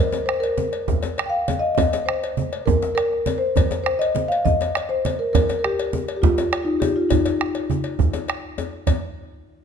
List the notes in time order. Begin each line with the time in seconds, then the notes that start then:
Already playing: A#4
0.12 cowbell, djembe slap, djembe tone, high conga
0.26 C5, bombo rim, djembe slap
0.40 A#4, cowbell, djembe slap
0.57 djembe tone, high conga
0.73 cowbell, djembe slap
0.88 bombo low, djembe slap, high conga, low conga, djembe bass
1.03 cowbell, djembe slap, high conga, djembe tone
1.18 bombo rim, cowbell, djembe slap, high conga
1.26 F5 G5
1.34 djembe slap
1.48 cowbell, djembe slap, high conga, djembe tone
1.59 D#5 F5
1.64 djembe slap
1.75 D#5, bombo rim, bombo low, cowbell, low conga
1.79 djembe bass
1.93 bombo rim, cowbell, djembe slap, djembe tone
2.06 C5, bombo rim, djembe slap, high conga
2.24 cowbell
2.37 high conga, djembe tone
2.53 cowbell
2.66 A#4, bombo low, djembe slap, high conga, low conga, djembe bass
2.82 djembe slap, djembe tone
2.95 A#4, bombo rim, cowbell
3.12 bombo rim, djembe slap
3.26 bombo rim, cowbell, djembe tone, high conga
3.38 C5
3.56 bombo rim, bombo low, cowbell, djembe bass, low conga
3.71 bombo rim, cowbell, djembe slap, djembe tone
3.84 C5, bombo rim, djembe slap, high conga
3.99 D#5, cowbell
4.15 djembe tone, high conga
4.28 F5, cowbell
4.45 D#5, bombo low, djembe slap, high conga, low conga, djembe bass
4.61 cowbell, djembe slap, djembe tone
4.75 bombo rim, cowbell
4.89 C5, bombo rim, djembe slap
5.05 bombo rim, cowbell, high conga, djembe tone
5.19 A#4
5.33 A#4, bombo rim, bombo low, cowbell, low conga, djembe bass
5.49 bombo rim, cowbell, djembe slap, djembe tone
5.59 A#4
5.64 G4, bombo rim, djembe slap, high conga
5.79 cowbell
5.93 high conga, djembe tone
6.08 cowbell
6.17 G4
6.22 F4, bombo low, djembe slap, high conga, djembe bass, low conga
6.38 cowbell, djembe slap, djembe tone
6.53 bombo rim, cowbell
6.62 D#4 F4
6.68 bombo rim, djembe slap
6.80 G4, bombo rim, cowbell, high conga, djembe tone
6.96 F4
7.10 D#4, bombo rim, bombo low, cowbell, djembe bass, low conga
7.26 cowbell, djembe slap, djembe tone
7.41 bombo rim, djembe slap
7.55 cowbell, djembe slap, high conga
7.70 bombo rim, djembe slap, high conga, djembe tone
7.84 cowbell
7.99 bombo low, djembe slap, low conga, djembe bass
8.13 cowbell, djembe slap, djembe tone
8.28 bombo rim, cowbell
8.58 bombo rim, cowbell, djembe slap, djembe tone
8.73 djembe slap
8.87 bombo low, cowbell, low conga, djembe bass